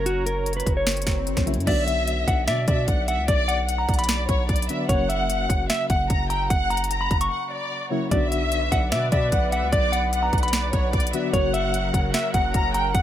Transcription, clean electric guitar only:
0.06 F#4
0.26 A#4
0.57 B4
0.77 C#5
1.67 D5
1.87 E5
2.28 F#5
2.48 E5
2.68 D5
3.08 F#5
3.28 D5
3.48 F#5
3.78 A#5
3.99 B5
4.89 C#5
5.09 E5
5.49 F#5
5.70 E5
5.90 F#5
6.30 A#5
6.50 F#5
6.70 A#5
7.01 B5
7.21 C#6
8.12 D5
8.32 E5
8.72 F#5
8.92 E5
9.12 D5
9.53 F#5
9.72 D5
9.92 F#5
10.23 A#5
10.43 B5
11.33 C#5
11.54 E5
11.94 F#5
12.14 E5
12.34 F#5
12.74 A#5
12.95 F#5

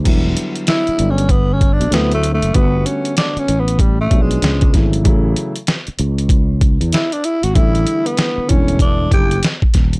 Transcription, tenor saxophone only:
0.69 E4
1.10 C#4
1.31 B3
1.53 C#4
1.73 D4
1.94 B3
2.14 A3
2.34 A3
2.54 B3
2.86 C#4
3.18 D4
3.38 C#4
3.60 B3
3.80 G3
4.01 A3
4.22 G#3
6.93 E4
7.13 D4
7.25 E4
7.44 F#4
7.55 E4
8.07 B3
8.49 C#4
8.82 D4
9.13 G4

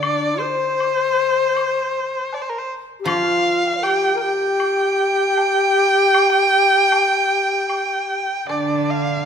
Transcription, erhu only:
0.00 D5
0.39 C5
2.34 D5
2.42 C5
2.49 A#4
2.58 C5
3.05 F5
3.83 G5
4.20 G5
8.49 D5
8.90 F5

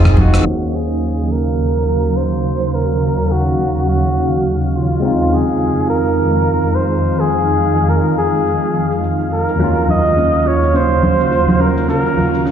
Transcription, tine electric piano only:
Already playing: G#3 C4 D#4 F4
0.42 D#2 F#3 A#3
0.50 F5
5.00 G#3 C4
5.05 D#4 F4
9.56 D#2 F#3 A#3
9.62 C#4 F4

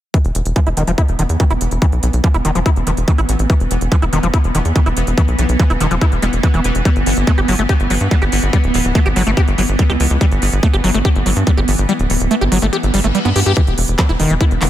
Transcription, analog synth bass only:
0.24 E1
0.35 E1
0.45 E1
0.66 E1
0.77 E1
0.87 E1
1.08 E1
1.19 E1
1.29 E2
1.50 E1
1.61 E1
1.71 E1
1.92 B1
2.03 B1
2.13 B1
2.34 E1
2.45 E1
2.55 E1
2.76 E1
2.87 E1
2.97 E1
3.18 A1
3.29 A1
3.39 A1
3.60 E1
3.71 E1
3.81 E1
4.02 E1
4.13 E1
4.23 E1
4.44 E1
4.55 E1
4.65 E2
4.86 E1
4.97 E1
5.07 E1
5.28 B1
5.38 B1
5.49 B1
5.70 E1
5.80 E1
5.91 E1
6.12 E1
6.22 E1
6.33 E1
6.54 E1
6.64 E1
6.75 E1
6.96 G1
7.06 G1
7.17 G1
7.38 G1
7.48 G1
7.59 G1
7.80 G1
7.90 G1
8.01 G2
8.22 G1
8.32 G1
8.43 G1
8.64 D1
8.74 D1
8.85 D1
9.06 G1
9.16 G1
9.27 G1
9.48 G1
9.58 G1
9.69 G1
9.90 C#2
10.00 C#2
10.10 C#2
10.32 G1
10.42 G1
10.53 G1
10.73 G1
10.84 G1
10.94 G1
11.15 G1
11.26 G1
11.36 G2
11.57 G1
11.68 G1
11.78 G1
11.99 D1
12.10 D1
12.20 D1
12.41 G1
12.52 G1
12.62 G1
12.83 G1
12.94 G1
13.04 G1
13.25 G2
13.36 G2
13.46 G2
13.67 E1
13.78 E1
13.88 E1
14.09 E1
14.20 E1
14.30 E1
14.51 E1
14.62 E1

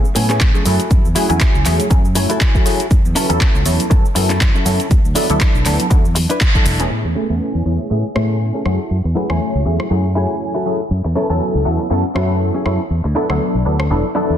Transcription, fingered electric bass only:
0.16 A2
0.66 F#2
0.91 F#2
1.05 E2
1.30 E2
1.55 C#2
1.66 E2
1.91 F#2
2.91 F#2
3.05 E2
3.30 E2
3.55 C#2
3.66 E2
3.91 F#2
4.16 F#2
4.66 F#2
4.91 E2
5.05 D2
5.30 D2
5.55 B1
5.66 D2
5.91 E2
6.66 E1
6.91 A2
7.04 E2
7.30 E2
7.55 E2
7.65 E2
7.91 A2
8.16 A2
8.65 F#2
8.91 F#2
9.05 E2
9.30 E2
9.55 C#2
9.66 E2
9.91 F#2
10.91 F#2
11.05 E2
11.30 E2
11.55 C#2
11.66 E2
11.90 F#2
12.15 F#2
12.66 F#2
12.90 E2
13.05 D2
13.30 D2
13.55 B1
13.66 D2
13.91 E1
14.30 E2

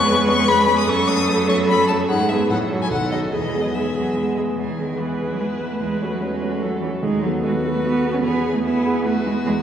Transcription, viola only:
Already playing: B4
0.87 A4
2.09 G#4
2.50 A4
2.91 A4
3.32 G#4
3.74 G#4
4.57 G#4
4.98 B4
5.80 B4
6.61 A4
7.03 G#4
7.42 F#4
8.24 G#4
8.64 G#4
9.05 B4

